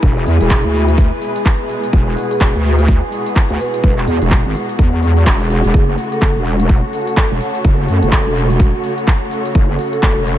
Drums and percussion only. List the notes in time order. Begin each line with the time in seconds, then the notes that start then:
0.03 kick, closed hi-hat, shaker
0.27 open hi-hat, shaker
0.41 closed hi-hat, shaker
0.50 kick, clap, closed hi-hat, shaker
0.74 open hi-hat, shaker
0.88 closed hi-hat, shaker
0.98 kick, closed hi-hat, shaker
1.22 open hi-hat, shaker
1.36 closed hi-hat, shaker
1.46 kick, clap, closed hi-hat, shaker
1.69 open hi-hat, shaker
1.84 closed hi-hat, shaker
1.93 kick, closed hi-hat, shaker
2.17 open hi-hat, shaker
2.31 closed hi-hat, shaker
2.41 kick, clap, closed hi-hat, shaker
2.65 open hi-hat, shaker
2.79 closed hi-hat, shaker
2.88 kick, closed hi-hat, shaker
3.12 open hi-hat, shaker
3.26 closed hi-hat, shaker
3.36 kick, clap, closed hi-hat, shaker
3.60 open hi-hat, shaker
3.74 closed hi-hat, shaker
3.84 kick, closed hi-hat, shaker
3.98 clap
4.08 open hi-hat, shaker
4.22 closed hi-hat, shaker
4.31 kick, clap, closed hi-hat, shaker
4.55 open hi-hat, shaker
4.69 closed hi-hat, shaker
4.79 kick, closed hi-hat, shaker
5.03 open hi-hat, shaker
5.17 open hi-hat, shaker
5.27 kick, clap, closed hi-hat, shaker
5.50 open hi-hat, shaker
5.65 closed hi-hat, shaker
5.74 kick, closed hi-hat, shaker
5.98 open hi-hat, shaker
6.12 closed hi-hat, shaker
6.22 kick, clap, closed hi-hat, shaker
6.46 open hi-hat, shaker
6.60 closed hi-hat, shaker
6.69 kick, closed hi-hat, shaker
6.93 open hi-hat, shaker
7.07 closed hi-hat, shaker
7.17 kick, clap, closed hi-hat, shaker
7.41 open hi-hat, shaker
7.55 closed hi-hat, shaker
7.65 kick, closed hi-hat, shaker
7.88 open hi-hat, shaker
8.03 closed hi-hat, shaker
8.12 kick, clap, closed hi-hat, shaker
8.36 open hi-hat, shaker
8.50 closed hi-hat, shaker
8.60 kick, closed hi-hat, shaker
8.84 open hi-hat, shaker
8.98 closed hi-hat, shaker
9.07 kick, clap, closed hi-hat, shaker
9.31 open hi-hat, shaker
9.46 closed hi-hat, shaker
9.55 kick, closed hi-hat, shaker
9.79 open hi-hat, shaker
9.93 closed hi-hat, shaker
10.03 kick, clap, closed hi-hat, shaker
10.27 open hi-hat, shaker